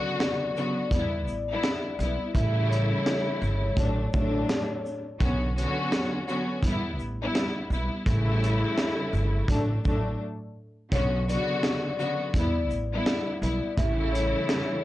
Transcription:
Already playing: string section C#3 D3 F#3 B3 F#4, vibraphone D5
0.20 snare, closed hi-hat
0.55 string section C#3 D3 F#3 B3 F#4, shaker
0.91 upright bass E2, string section G3 B3 E4, kick, closed hi-hat
1.27 upright bass A1, shaker
1.50 string section G3 B3 E4
1.63 snare, closed hi-hat
1.99 upright bass B1, string section G3 B3 E4, closed hi-hat, shaker
2.34 upright bass A1, string section C#3 E3 G3 A3 E4, vibraphone E5, kick, closed hi-hat
2.70 vibraphone C#5, closed hi-hat, shaker
3.06 snare, closed hi-hat
3.42 upright bass G1, shaker
3.76 upright bass A1, string section A2 F#3 A3 D4, kick, closed hi-hat
4.12 upright bass A1, string section A2 F#3 A3 D4, kick, shaker
4.49 snare, closed hi-hat
4.86 shaker
5.20 upright bass B1, string section D3 F#3 B3 C#4 F#4, kick, closed hi-hat
5.55 string section D3 F#3 B3 C#4 F#4, closed hi-hat, shaker
5.92 snare, closed hi-hat
6.26 string section D3 F#3 B3 C#4 F#4, shaker
6.63 upright bass E2, string section G3 B3 E4, kick, closed hi-hat
6.99 upright bass A1, shaker
7.21 string section G3 B3 E4
7.35 snare, closed hi-hat
7.70 upright bass B1, string section G3 B3 E4, shaker
8.05 upright bass A1, string section C#3 E3 G3 A3 E4, kick, closed hi-hat
8.44 closed hi-hat, shaker
8.78 snare, closed hi-hat
9.13 upright bass G1, shaker
9.47 upright bass A1, string section A2 F#3 A3 D4, kick, closed hi-hat
9.83 upright bass A1, string section A2 F#3 A3 D4, kick, shaker
10.91 upright bass B1, string section D3 F#3 B3 C#4 F#4, vibraphone C#5, kick, closed hi-hat
11.27 string section C#3 D3 F#3 B3 F#4, vibraphone D5, closed hi-hat, shaker
11.63 snare, closed hi-hat
11.98 string section C#3 D3 F#3 B3 F#4, shaker
12.34 upright bass E2, string section G3 B3 E4, kick, closed hi-hat
12.70 upright bass A1, shaker
12.93 string section G3 B3 E4
13.06 snare, closed hi-hat
13.42 upright bass B1, string section G3 B3 E4, closed hi-hat, shaker
13.77 upright bass A1, string section C#3 E3 G3 A3 E4, vibraphone E5, kick, closed hi-hat
14.12 vibraphone C#5, closed hi-hat, shaker
14.49 snare, closed hi-hat

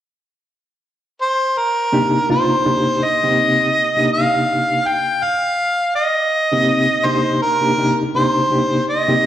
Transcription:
1.22 harmonica C5
1.58 harmonica A#4
1.92 reed electric piano C3 A#3 D4 D#4 G4
2.29 reed electric piano C3 A#3 D4 D#4 F4, harmonica C5
2.65 reed electric piano C3 A#3 D4 D#4 G4
3.05 harmonica D#5
3.23 reed electric piano C3 A#3 C4 D#4 G4
3.96 reed electric piano C3 A#3 D4 D#4 G4
4.13 harmonica F5
4.87 harmonica G5
5.23 harmonica F5
5.96 harmonica D#5
6.52 reed electric piano C3 A#3 C4 D#4 G4
7.05 reed electric piano C3 A#3 D4 D#4 G4, harmonica C5
7.42 harmonica A#4
7.61 reed electric piano C3 A#3 D4 D#4 G4
7.78 reed electric piano C3 A#3 D4 D#4 G4
8.15 reed electric piano C3 A#3 D4 D#4 G4, harmonica C5
8.51 reed electric piano C3 A#3 D4 D#4 G4
8.90 harmonica D#5
9.08 reed electric piano C3 A#3 C4 D#4 G4

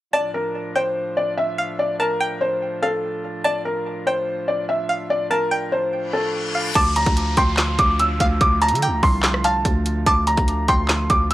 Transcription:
0.13 pipe organ A2 F3 D4 F4, felt piano D5, synth pluck A5
0.34 felt piano A#4
0.76 felt piano C5, synth pluck G5
1.17 felt piano D5
1.37 felt piano E5
1.58 synth pluck F5
1.79 felt piano D5
2.00 felt piano A#4, synth pluck A5
2.20 synth pluck G5
2.41 felt piano C5
2.82 felt piano A4, synth pluck F5
3.44 felt piano D5, synth pluck A5
3.65 felt piano A#4
4.07 felt piano C5, synth pluck G5
4.48 felt piano D5
4.69 felt piano E5
4.89 synth pluck F5
5.10 felt piano D5
5.30 felt piano A#4, synth pluck A5
5.51 synth pluck G5
5.72 felt piano C5
5.93 reverse cymbal
6.13 felt piano A4
6.55 synth pluck F5
6.75 808-style bass D2, pipe organ D3 F3 A3 F4, synth pluck A5, felt piano D6, kick, closed hi-hat, crash, downlifter
6.96 felt piano A#5, closed hi-hat
7.06 808-style bass D2, kick, closed hi-hat
7.17 closed hi-hat
7.37 808-style bass D2, synth pluck G5, felt piano C6, kick, closed hi-hat
7.57 snare, clap, closed hi-hat
7.79 808-style bass D2, felt piano D6, kick, closed hi-hat
8.00 felt piano E6, closed hi-hat
8.20 808-style bass D2, synth pluck F5, kick, closed hi-hat
8.41 808-style bass D2, felt piano D6, kick, closed hi-hat
8.62 synth pluck A5, felt piano A#5, closed hi-hat
8.68 808-style bass D3, closed hi-hat
8.75 closed hi-hat
8.82 synth pluck G5, closed hi-hat
8.87 808-style bass D2
9.03 808-style bass C2, felt piano C6, kick, open hi-hat
9.23 snare, clap, closed hi-hat
9.34 cross-stick
9.44 synth pluck F5, felt piano A5, closed hi-hat
9.65 808-style bass D2, kick, closed hi-hat
9.86 closed hi-hat
10.06 808-style bass D2, pipe organ F4, synth pluck A5, felt piano D6, kick, closed hi-hat
10.27 felt piano A#5, closed hi-hat
10.37 808-style bass D2, kick, closed hi-hat
10.48 closed hi-hat
10.68 808-style bass D2, synth pluck G5, felt piano C6, kick, closed hi-hat
10.88 snare, clap, closed hi-hat
11.10 808-style bass D2, felt piano D6, kick, closed hi-hat
11.31 felt piano E6, closed hi-hat

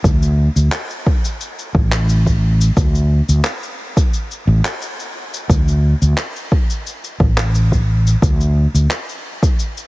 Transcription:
0.04 fretless electric bass D2, kick, cabasa
0.23 cabasa
0.56 fretless electric bass D2, cabasa
0.72 clap, cabasa
0.90 cabasa
1.06 kick
1.25 cabasa
1.41 cabasa
1.59 cabasa
1.75 fretless electric bass A1, kick
1.92 clap, cabasa
2.09 cabasa
2.26 kick, cabasa
2.61 cabasa
2.77 fretless electric bass D2, kick, cabasa
2.95 cabasa
3.29 fretless electric bass D2, cabasa
3.45 clap, cabasa
3.63 cabasa
3.97 kick, cabasa
4.14 cabasa
4.31 cabasa
4.47 fretless electric bass A1
4.65 clap, cabasa
4.82 cabasa
5.00 cabasa
5.34 cabasa
5.50 fretless electric bass D2, kick, cabasa
5.68 cabasa
6.02 fretless electric bass D2, cabasa
6.17 clap, cabasa
6.36 cabasa
6.52 kick
6.70 cabasa
6.87 cabasa
7.04 cabasa
7.20 fretless electric bass A1, kick
7.38 clap, cabasa
7.55 cabasa
7.72 kick, cabasa
8.07 cabasa
8.22 fretless electric bass D2, kick, cabasa
8.41 cabasa
8.74 fretless electric bass D2, cabasa
8.91 clap, cabasa
9.09 cabasa
9.43 kick, cabasa
9.59 cabasa
9.77 cabasa

